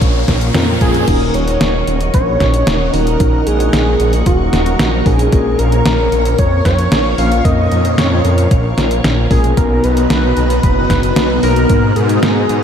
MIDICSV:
0, 0, Header, 1, 7, 480
1, 0, Start_track
1, 0, Key_signature, -6, "minor"
1, 0, Tempo, 530973
1, 975, Time_signature, 4, 2, 24, 8
1, 11421, End_track
2, 0, Start_track
2, 0, Title_t, "String machine"
2, 0, Program_c, 0, 50
2, 0, Note_on_c, 0, 70, 83
2, 0, Note_on_c, 0, 73, 76
2, 0, Note_on_c, 0, 77, 78
2, 0, Note_on_c, 0, 85, 90
2, 937, Note_off_c, 0, 77, 0
2, 937, Note_off_c, 0, 85, 0
2, 938, Note_off_c, 0, 70, 0
2, 938, Note_off_c, 0, 73, 0
2, 972, Note_on_c, 0, 75, 78
2, 972, Note_on_c, 0, 85, 94
2, 973, Note_on_c, 0, 78, 78
2, 974, Note_on_c, 0, 70, 83
2, 4777, Note_off_c, 0, 75, 0
2, 4777, Note_off_c, 0, 78, 0
2, 4814, Note_on_c, 0, 73, 74
2, 4814, Note_on_c, 0, 77, 76
2, 8617, Note_off_c, 0, 85, 0
2, 8618, Note_off_c, 0, 70, 0
2, 8618, Note_off_c, 0, 73, 0
2, 8618, Note_off_c, 0, 77, 0
2, 8655, Note_on_c, 0, 59, 76
2, 8655, Note_on_c, 0, 66, 84
2, 8655, Note_on_c, 0, 75, 79
2, 8655, Note_on_c, 0, 82, 93
2, 11421, Note_off_c, 0, 59, 0
2, 11421, Note_off_c, 0, 66, 0
2, 11421, Note_off_c, 0, 75, 0
2, 11421, Note_off_c, 0, 82, 0
2, 11421, End_track
3, 0, Start_track
3, 0, Title_t, "Analog synth lead"
3, 0, Program_c, 1, 81
3, 0, Note_on_c, 1, 73, 112
3, 492, Note_off_c, 1, 73, 0
3, 735, Note_on_c, 1, 68, 87
3, 977, Note_on_c, 1, 70, 93
3, 990, Note_off_c, 1, 68, 0
3, 1217, Note_on_c, 1, 73, 106
3, 1230, Note_off_c, 1, 70, 0
3, 1930, Note_off_c, 1, 73, 0
3, 1936, Note_on_c, 1, 73, 108
3, 2654, Note_on_c, 1, 70, 107
3, 2668, Note_off_c, 1, 73, 0
3, 3136, Note_on_c, 1, 68, 108
3, 3150, Note_off_c, 1, 70, 0
3, 3850, Note_off_c, 1, 68, 0
3, 3856, Note_on_c, 1, 66, 100
3, 4577, Note_on_c, 1, 68, 104
3, 4591, Note_off_c, 1, 66, 0
3, 5053, Note_on_c, 1, 70, 118
3, 5067, Note_off_c, 1, 68, 0
3, 5770, Note_off_c, 1, 70, 0
3, 5776, Note_on_c, 1, 73, 106
3, 5998, Note_off_c, 1, 73, 0
3, 6016, Note_on_c, 1, 73, 113
3, 6462, Note_off_c, 1, 73, 0
3, 6494, Note_on_c, 1, 77, 113
3, 6730, Note_on_c, 1, 75, 114
3, 6744, Note_off_c, 1, 77, 0
3, 7212, Note_on_c, 1, 73, 95
3, 7225, Note_off_c, 1, 75, 0
3, 7693, Note_off_c, 1, 73, 0
3, 8417, Note_on_c, 1, 68, 91
3, 8657, Note_on_c, 1, 70, 96
3, 8670, Note_off_c, 1, 68, 0
3, 8896, Note_on_c, 1, 71, 111
3, 8909, Note_off_c, 1, 70, 0
3, 9610, Note_off_c, 1, 71, 0
3, 9615, Note_on_c, 1, 71, 106
3, 10298, Note_off_c, 1, 71, 0
3, 10337, Note_on_c, 1, 70, 108
3, 10813, Note_on_c, 1, 68, 109
3, 10827, Note_off_c, 1, 70, 0
3, 11421, Note_off_c, 1, 68, 0
3, 11421, End_track
4, 0, Start_track
4, 0, Title_t, "FM electric piano"
4, 0, Program_c, 2, 5
4, 0, Note_on_c, 2, 46, 74
4, 0, Note_on_c, 2, 58, 70
4, 0, Note_on_c, 2, 61, 68
4, 0, Note_on_c, 2, 65, 68
4, 0, Note_on_c, 2, 70, 81
4, 469, Note_off_c, 2, 46, 0
4, 469, Note_off_c, 2, 58, 0
4, 469, Note_off_c, 2, 61, 0
4, 469, Note_off_c, 2, 65, 0
4, 469, Note_off_c, 2, 70, 0
4, 492, Note_on_c, 2, 46, 92
4, 492, Note_on_c, 2, 58, 86
4, 492, Note_on_c, 2, 61, 88
4, 492, Note_on_c, 2, 65, 88
4, 492, Note_on_c, 2, 70, 108
4, 944, Note_off_c, 2, 46, 0
4, 944, Note_off_c, 2, 58, 0
4, 944, Note_off_c, 2, 65, 0
4, 944, Note_off_c, 2, 70, 0
4, 945, Note_off_c, 2, 61, 0
4, 973, Note_on_c, 2, 51, 75
4, 973, Note_on_c, 2, 61, 69
4, 973, Note_on_c, 2, 63, 68
4, 973, Note_on_c, 2, 66, 68
4, 973, Note_on_c, 2, 70, 82
4, 2625, Note_off_c, 2, 51, 0
4, 2625, Note_off_c, 2, 61, 0
4, 2625, Note_off_c, 2, 63, 0
4, 2625, Note_off_c, 2, 66, 0
4, 2625, Note_off_c, 2, 70, 0
4, 2654, Note_on_c, 2, 63, 68
4, 2655, Note_on_c, 2, 51, 73
4, 2655, Note_on_c, 2, 61, 68
4, 2655, Note_on_c, 2, 66, 68
4, 2655, Note_on_c, 2, 70, 85
4, 2866, Note_off_c, 2, 51, 0
4, 2866, Note_off_c, 2, 61, 0
4, 2866, Note_off_c, 2, 63, 0
4, 2866, Note_off_c, 2, 66, 0
4, 2866, Note_off_c, 2, 70, 0
4, 2893, Note_on_c, 2, 51, 75
4, 2893, Note_on_c, 2, 61, 69
4, 2893, Note_on_c, 2, 63, 70
4, 2893, Note_on_c, 2, 66, 68
4, 2893, Note_on_c, 2, 70, 83
4, 4545, Note_off_c, 2, 51, 0
4, 4545, Note_off_c, 2, 61, 0
4, 4545, Note_off_c, 2, 63, 0
4, 4545, Note_off_c, 2, 66, 0
4, 4545, Note_off_c, 2, 70, 0
4, 4572, Note_on_c, 2, 46, 75
4, 4572, Note_on_c, 2, 61, 68
4, 4572, Note_on_c, 2, 63, 68
4, 4572, Note_on_c, 2, 66, 70
4, 4572, Note_on_c, 2, 70, 83
4, 4784, Note_off_c, 2, 61, 0
4, 4785, Note_off_c, 2, 46, 0
4, 4785, Note_off_c, 2, 63, 0
4, 4785, Note_off_c, 2, 66, 0
4, 4785, Note_off_c, 2, 70, 0
4, 4813, Note_on_c, 2, 46, 77
4, 4813, Note_on_c, 2, 65, 70
4, 4813, Note_on_c, 2, 70, 85
4, 4814, Note_on_c, 2, 58, 71
4, 4814, Note_on_c, 2, 61, 68
4, 6465, Note_off_c, 2, 46, 0
4, 6465, Note_off_c, 2, 58, 0
4, 6465, Note_off_c, 2, 61, 0
4, 6465, Note_off_c, 2, 65, 0
4, 6465, Note_off_c, 2, 70, 0
4, 6494, Note_on_c, 2, 46, 73
4, 6494, Note_on_c, 2, 58, 69
4, 6494, Note_on_c, 2, 61, 68
4, 6494, Note_on_c, 2, 65, 70
4, 6494, Note_on_c, 2, 70, 82
4, 6705, Note_off_c, 2, 46, 0
4, 6705, Note_off_c, 2, 65, 0
4, 6705, Note_off_c, 2, 70, 0
4, 6706, Note_off_c, 2, 58, 0
4, 6706, Note_off_c, 2, 61, 0
4, 6733, Note_on_c, 2, 46, 77
4, 6734, Note_on_c, 2, 58, 70
4, 6734, Note_on_c, 2, 61, 68
4, 6734, Note_on_c, 2, 65, 71
4, 6734, Note_on_c, 2, 70, 84
4, 8385, Note_off_c, 2, 46, 0
4, 8385, Note_off_c, 2, 58, 0
4, 8385, Note_off_c, 2, 61, 0
4, 8385, Note_off_c, 2, 70, 0
4, 8386, Note_off_c, 2, 65, 0
4, 8413, Note_on_c, 2, 47, 75
4, 8413, Note_on_c, 2, 58, 69
4, 8413, Note_on_c, 2, 61, 71
4, 8413, Note_on_c, 2, 65, 68
4, 8413, Note_on_c, 2, 70, 83
4, 8625, Note_off_c, 2, 47, 0
4, 8625, Note_off_c, 2, 58, 0
4, 8625, Note_off_c, 2, 61, 0
4, 8625, Note_off_c, 2, 65, 0
4, 8625, Note_off_c, 2, 70, 0
4, 8653, Note_on_c, 2, 59, 69
4, 8653, Note_on_c, 2, 82, 85
4, 8654, Note_on_c, 2, 47, 76
4, 8654, Note_on_c, 2, 63, 71
4, 8654, Note_on_c, 2, 66, 72
4, 10305, Note_off_c, 2, 47, 0
4, 10305, Note_off_c, 2, 59, 0
4, 10305, Note_off_c, 2, 63, 0
4, 10305, Note_off_c, 2, 66, 0
4, 10305, Note_off_c, 2, 82, 0
4, 10333, Note_on_c, 2, 47, 72
4, 10333, Note_on_c, 2, 59, 68
4, 10333, Note_on_c, 2, 63, 70
4, 10333, Note_on_c, 2, 66, 71
4, 10333, Note_on_c, 2, 70, 84
4, 10545, Note_off_c, 2, 47, 0
4, 10545, Note_off_c, 2, 59, 0
4, 10545, Note_off_c, 2, 63, 0
4, 10545, Note_off_c, 2, 66, 0
4, 10545, Note_off_c, 2, 70, 0
4, 10574, Note_on_c, 2, 47, 74
4, 10574, Note_on_c, 2, 59, 69
4, 10574, Note_on_c, 2, 63, 71
4, 10574, Note_on_c, 2, 66, 72
4, 10574, Note_on_c, 2, 70, 88
4, 11421, Note_off_c, 2, 47, 0
4, 11421, Note_off_c, 2, 59, 0
4, 11421, Note_off_c, 2, 63, 0
4, 11421, Note_off_c, 2, 66, 0
4, 11421, Note_off_c, 2, 70, 0
4, 11421, End_track
5, 0, Start_track
5, 0, Title_t, "Detuned saw bass"
5, 0, Program_c, 3, 39
5, 14, Note_on_c, 3, 34, 79
5, 222, Note_off_c, 3, 34, 0
5, 255, Note_on_c, 3, 34, 93
5, 463, Note_off_c, 3, 34, 0
5, 495, Note_on_c, 3, 41, 95
5, 703, Note_off_c, 3, 41, 0
5, 735, Note_on_c, 3, 41, 99
5, 943, Note_off_c, 3, 41, 0
5, 976, Note_on_c, 3, 27, 97
5, 1183, Note_off_c, 3, 27, 0
5, 1215, Note_on_c, 3, 27, 86
5, 1423, Note_off_c, 3, 27, 0
5, 1454, Note_on_c, 3, 27, 91
5, 1662, Note_off_c, 3, 27, 0
5, 1694, Note_on_c, 3, 27, 86
5, 1902, Note_off_c, 3, 27, 0
5, 1936, Note_on_c, 3, 34, 80
5, 2143, Note_off_c, 3, 34, 0
5, 2177, Note_on_c, 3, 34, 98
5, 2383, Note_off_c, 3, 34, 0
5, 2415, Note_on_c, 3, 27, 92
5, 2623, Note_off_c, 3, 27, 0
5, 2656, Note_on_c, 3, 27, 102
5, 2863, Note_off_c, 3, 27, 0
5, 2896, Note_on_c, 3, 34, 89
5, 3103, Note_off_c, 3, 34, 0
5, 3135, Note_on_c, 3, 34, 91
5, 3343, Note_off_c, 3, 34, 0
5, 3376, Note_on_c, 3, 34, 96
5, 3583, Note_off_c, 3, 34, 0
5, 3615, Note_on_c, 3, 34, 85
5, 3823, Note_off_c, 3, 34, 0
5, 3855, Note_on_c, 3, 27, 78
5, 4063, Note_off_c, 3, 27, 0
5, 4097, Note_on_c, 3, 27, 92
5, 4303, Note_off_c, 3, 27, 0
5, 4336, Note_on_c, 3, 34, 100
5, 4543, Note_off_c, 3, 34, 0
5, 4576, Note_on_c, 3, 34, 97
5, 4783, Note_off_c, 3, 34, 0
5, 4816, Note_on_c, 3, 34, 97
5, 5023, Note_off_c, 3, 34, 0
5, 5056, Note_on_c, 3, 34, 87
5, 5263, Note_off_c, 3, 34, 0
5, 5297, Note_on_c, 3, 34, 89
5, 5504, Note_off_c, 3, 34, 0
5, 5535, Note_on_c, 3, 34, 87
5, 5743, Note_off_c, 3, 34, 0
5, 5776, Note_on_c, 3, 41, 81
5, 5983, Note_off_c, 3, 41, 0
5, 6015, Note_on_c, 3, 41, 97
5, 6222, Note_off_c, 3, 41, 0
5, 6255, Note_on_c, 3, 34, 91
5, 6463, Note_off_c, 3, 34, 0
5, 6494, Note_on_c, 3, 34, 104
5, 6702, Note_off_c, 3, 34, 0
5, 6735, Note_on_c, 3, 41, 88
5, 6943, Note_off_c, 3, 41, 0
5, 6975, Note_on_c, 3, 41, 89
5, 7182, Note_off_c, 3, 41, 0
5, 7216, Note_on_c, 3, 41, 97
5, 7423, Note_off_c, 3, 41, 0
5, 7454, Note_on_c, 3, 41, 86
5, 7662, Note_off_c, 3, 41, 0
5, 7696, Note_on_c, 3, 34, 79
5, 7903, Note_off_c, 3, 34, 0
5, 7935, Note_on_c, 3, 34, 89
5, 8143, Note_off_c, 3, 34, 0
5, 8175, Note_on_c, 3, 34, 86
5, 8382, Note_off_c, 3, 34, 0
5, 8416, Note_on_c, 3, 34, 83
5, 8623, Note_off_c, 3, 34, 0
5, 8656, Note_on_c, 3, 35, 99
5, 8863, Note_off_c, 3, 35, 0
5, 8897, Note_on_c, 3, 35, 87
5, 9104, Note_off_c, 3, 35, 0
5, 9134, Note_on_c, 3, 35, 90
5, 9342, Note_off_c, 3, 35, 0
5, 9375, Note_on_c, 3, 35, 88
5, 9583, Note_off_c, 3, 35, 0
5, 9615, Note_on_c, 3, 30, 81
5, 9823, Note_off_c, 3, 30, 0
5, 9855, Note_on_c, 3, 30, 95
5, 10062, Note_off_c, 3, 30, 0
5, 10094, Note_on_c, 3, 35, 93
5, 10302, Note_off_c, 3, 35, 0
5, 10335, Note_on_c, 3, 35, 101
5, 10542, Note_off_c, 3, 35, 0
5, 10575, Note_on_c, 3, 44, 92
5, 10783, Note_off_c, 3, 44, 0
5, 10815, Note_on_c, 3, 44, 92
5, 11022, Note_off_c, 3, 44, 0
5, 11057, Note_on_c, 3, 44, 97
5, 11263, Note_off_c, 3, 44, 0
5, 11296, Note_on_c, 3, 44, 84
5, 11421, Note_off_c, 3, 44, 0
5, 11421, End_track
6, 0, Start_track
6, 0, Title_t, "Riser"
6, 0, Program_c, 4, 103
6, 0, Note_on_c, 4, 60, 72
6, 973, Note_off_c, 4, 60, 0
6, 11421, End_track
7, 0, Start_track
7, 0, Title_t, "Drums"
7, 14, Note_on_c, 9, 36, 116
7, 15, Note_on_c, 9, 42, 88
7, 104, Note_off_c, 9, 36, 0
7, 105, Note_off_c, 9, 42, 0
7, 254, Note_on_c, 9, 38, 62
7, 254, Note_on_c, 9, 42, 66
7, 255, Note_on_c, 9, 36, 64
7, 345, Note_off_c, 9, 36, 0
7, 345, Note_off_c, 9, 38, 0
7, 345, Note_off_c, 9, 42, 0
7, 374, Note_on_c, 9, 42, 65
7, 464, Note_off_c, 9, 42, 0
7, 493, Note_on_c, 9, 38, 117
7, 493, Note_on_c, 9, 42, 88
7, 583, Note_off_c, 9, 38, 0
7, 583, Note_off_c, 9, 42, 0
7, 733, Note_on_c, 9, 42, 65
7, 735, Note_on_c, 9, 36, 112
7, 823, Note_off_c, 9, 42, 0
7, 825, Note_off_c, 9, 36, 0
7, 854, Note_on_c, 9, 42, 64
7, 944, Note_off_c, 9, 42, 0
7, 973, Note_on_c, 9, 42, 91
7, 973, Note_on_c, 9, 49, 100
7, 975, Note_on_c, 9, 36, 114
7, 1063, Note_off_c, 9, 42, 0
7, 1063, Note_off_c, 9, 49, 0
7, 1066, Note_off_c, 9, 36, 0
7, 1214, Note_on_c, 9, 42, 69
7, 1304, Note_off_c, 9, 42, 0
7, 1334, Note_on_c, 9, 42, 68
7, 1424, Note_off_c, 9, 42, 0
7, 1454, Note_on_c, 9, 38, 118
7, 1454, Note_on_c, 9, 42, 94
7, 1544, Note_off_c, 9, 38, 0
7, 1544, Note_off_c, 9, 42, 0
7, 1695, Note_on_c, 9, 42, 68
7, 1785, Note_off_c, 9, 42, 0
7, 1813, Note_on_c, 9, 42, 69
7, 1903, Note_off_c, 9, 42, 0
7, 1932, Note_on_c, 9, 42, 95
7, 1936, Note_on_c, 9, 36, 115
7, 2022, Note_off_c, 9, 42, 0
7, 2026, Note_off_c, 9, 36, 0
7, 2173, Note_on_c, 9, 38, 63
7, 2173, Note_on_c, 9, 42, 68
7, 2176, Note_on_c, 9, 36, 62
7, 2264, Note_off_c, 9, 38, 0
7, 2264, Note_off_c, 9, 42, 0
7, 2267, Note_off_c, 9, 36, 0
7, 2294, Note_on_c, 9, 42, 68
7, 2384, Note_off_c, 9, 42, 0
7, 2414, Note_on_c, 9, 38, 118
7, 2414, Note_on_c, 9, 42, 95
7, 2504, Note_off_c, 9, 38, 0
7, 2504, Note_off_c, 9, 42, 0
7, 2654, Note_on_c, 9, 46, 79
7, 2744, Note_off_c, 9, 46, 0
7, 2774, Note_on_c, 9, 42, 69
7, 2865, Note_off_c, 9, 42, 0
7, 2893, Note_on_c, 9, 42, 95
7, 2896, Note_on_c, 9, 36, 119
7, 2984, Note_off_c, 9, 42, 0
7, 2986, Note_off_c, 9, 36, 0
7, 3135, Note_on_c, 9, 42, 67
7, 3225, Note_off_c, 9, 42, 0
7, 3255, Note_on_c, 9, 42, 68
7, 3346, Note_off_c, 9, 42, 0
7, 3374, Note_on_c, 9, 38, 119
7, 3374, Note_on_c, 9, 42, 95
7, 3464, Note_off_c, 9, 38, 0
7, 3464, Note_off_c, 9, 42, 0
7, 3614, Note_on_c, 9, 42, 71
7, 3704, Note_off_c, 9, 42, 0
7, 3733, Note_on_c, 9, 42, 68
7, 3823, Note_off_c, 9, 42, 0
7, 3853, Note_on_c, 9, 42, 100
7, 3855, Note_on_c, 9, 36, 115
7, 3943, Note_off_c, 9, 42, 0
7, 3946, Note_off_c, 9, 36, 0
7, 4094, Note_on_c, 9, 38, 65
7, 4094, Note_on_c, 9, 42, 70
7, 4185, Note_off_c, 9, 38, 0
7, 4185, Note_off_c, 9, 42, 0
7, 4214, Note_on_c, 9, 42, 67
7, 4304, Note_off_c, 9, 42, 0
7, 4334, Note_on_c, 9, 38, 123
7, 4334, Note_on_c, 9, 42, 98
7, 4425, Note_off_c, 9, 38, 0
7, 4425, Note_off_c, 9, 42, 0
7, 4573, Note_on_c, 9, 46, 77
7, 4575, Note_on_c, 9, 36, 114
7, 4664, Note_off_c, 9, 46, 0
7, 4665, Note_off_c, 9, 36, 0
7, 4694, Note_on_c, 9, 42, 70
7, 4784, Note_off_c, 9, 42, 0
7, 4813, Note_on_c, 9, 42, 93
7, 4815, Note_on_c, 9, 36, 124
7, 4904, Note_off_c, 9, 42, 0
7, 4906, Note_off_c, 9, 36, 0
7, 5053, Note_on_c, 9, 42, 67
7, 5143, Note_off_c, 9, 42, 0
7, 5173, Note_on_c, 9, 42, 67
7, 5264, Note_off_c, 9, 42, 0
7, 5293, Note_on_c, 9, 38, 123
7, 5293, Note_on_c, 9, 42, 93
7, 5384, Note_off_c, 9, 38, 0
7, 5384, Note_off_c, 9, 42, 0
7, 5534, Note_on_c, 9, 42, 66
7, 5625, Note_off_c, 9, 42, 0
7, 5654, Note_on_c, 9, 42, 68
7, 5744, Note_off_c, 9, 42, 0
7, 5772, Note_on_c, 9, 42, 95
7, 5775, Note_on_c, 9, 36, 118
7, 5863, Note_off_c, 9, 42, 0
7, 5865, Note_off_c, 9, 36, 0
7, 6014, Note_on_c, 9, 38, 66
7, 6014, Note_on_c, 9, 42, 68
7, 6015, Note_on_c, 9, 36, 66
7, 6104, Note_off_c, 9, 38, 0
7, 6104, Note_off_c, 9, 42, 0
7, 6105, Note_off_c, 9, 36, 0
7, 6134, Note_on_c, 9, 42, 68
7, 6224, Note_off_c, 9, 42, 0
7, 6254, Note_on_c, 9, 38, 117
7, 6254, Note_on_c, 9, 42, 93
7, 6344, Note_off_c, 9, 38, 0
7, 6344, Note_off_c, 9, 42, 0
7, 6493, Note_on_c, 9, 46, 75
7, 6583, Note_off_c, 9, 46, 0
7, 6614, Note_on_c, 9, 42, 67
7, 6705, Note_off_c, 9, 42, 0
7, 6735, Note_on_c, 9, 36, 120
7, 6735, Note_on_c, 9, 42, 89
7, 6825, Note_off_c, 9, 36, 0
7, 6826, Note_off_c, 9, 42, 0
7, 6975, Note_on_c, 9, 42, 65
7, 7065, Note_off_c, 9, 42, 0
7, 7095, Note_on_c, 9, 42, 67
7, 7185, Note_off_c, 9, 42, 0
7, 7215, Note_on_c, 9, 38, 116
7, 7215, Note_on_c, 9, 42, 89
7, 7305, Note_off_c, 9, 38, 0
7, 7305, Note_off_c, 9, 42, 0
7, 7455, Note_on_c, 9, 42, 63
7, 7545, Note_off_c, 9, 42, 0
7, 7575, Note_on_c, 9, 42, 63
7, 7665, Note_off_c, 9, 42, 0
7, 7694, Note_on_c, 9, 42, 94
7, 7695, Note_on_c, 9, 36, 123
7, 7784, Note_off_c, 9, 42, 0
7, 7786, Note_off_c, 9, 36, 0
7, 7934, Note_on_c, 9, 38, 66
7, 7934, Note_on_c, 9, 42, 68
7, 8025, Note_off_c, 9, 38, 0
7, 8025, Note_off_c, 9, 42, 0
7, 8054, Note_on_c, 9, 42, 66
7, 8145, Note_off_c, 9, 42, 0
7, 8176, Note_on_c, 9, 38, 119
7, 8176, Note_on_c, 9, 42, 90
7, 8266, Note_off_c, 9, 38, 0
7, 8266, Note_off_c, 9, 42, 0
7, 8414, Note_on_c, 9, 46, 76
7, 8415, Note_on_c, 9, 36, 111
7, 8504, Note_off_c, 9, 46, 0
7, 8505, Note_off_c, 9, 36, 0
7, 8534, Note_on_c, 9, 42, 63
7, 8624, Note_off_c, 9, 42, 0
7, 8654, Note_on_c, 9, 42, 88
7, 8655, Note_on_c, 9, 36, 112
7, 8744, Note_off_c, 9, 42, 0
7, 8745, Note_off_c, 9, 36, 0
7, 8893, Note_on_c, 9, 42, 64
7, 8983, Note_off_c, 9, 42, 0
7, 9012, Note_on_c, 9, 42, 66
7, 9102, Note_off_c, 9, 42, 0
7, 9132, Note_on_c, 9, 38, 117
7, 9132, Note_on_c, 9, 42, 87
7, 9223, Note_off_c, 9, 38, 0
7, 9223, Note_off_c, 9, 42, 0
7, 9371, Note_on_c, 9, 42, 62
7, 9462, Note_off_c, 9, 42, 0
7, 9494, Note_on_c, 9, 42, 61
7, 9584, Note_off_c, 9, 42, 0
7, 9613, Note_on_c, 9, 42, 88
7, 9615, Note_on_c, 9, 36, 115
7, 9703, Note_off_c, 9, 42, 0
7, 9705, Note_off_c, 9, 36, 0
7, 9853, Note_on_c, 9, 38, 64
7, 9853, Note_on_c, 9, 42, 65
7, 9854, Note_on_c, 9, 36, 62
7, 9944, Note_off_c, 9, 38, 0
7, 9944, Note_off_c, 9, 42, 0
7, 9945, Note_off_c, 9, 36, 0
7, 9973, Note_on_c, 9, 42, 66
7, 10064, Note_off_c, 9, 42, 0
7, 10092, Note_on_c, 9, 38, 117
7, 10092, Note_on_c, 9, 42, 91
7, 10182, Note_off_c, 9, 38, 0
7, 10182, Note_off_c, 9, 42, 0
7, 10333, Note_on_c, 9, 46, 79
7, 10423, Note_off_c, 9, 46, 0
7, 10453, Note_on_c, 9, 42, 66
7, 10544, Note_off_c, 9, 42, 0
7, 10572, Note_on_c, 9, 42, 86
7, 10575, Note_on_c, 9, 36, 108
7, 10663, Note_off_c, 9, 42, 0
7, 10665, Note_off_c, 9, 36, 0
7, 10814, Note_on_c, 9, 42, 64
7, 10904, Note_off_c, 9, 42, 0
7, 10933, Note_on_c, 9, 42, 63
7, 11023, Note_off_c, 9, 42, 0
7, 11053, Note_on_c, 9, 38, 112
7, 11053, Note_on_c, 9, 42, 85
7, 11144, Note_off_c, 9, 38, 0
7, 11144, Note_off_c, 9, 42, 0
7, 11294, Note_on_c, 9, 42, 65
7, 11385, Note_off_c, 9, 42, 0
7, 11421, End_track
0, 0, End_of_file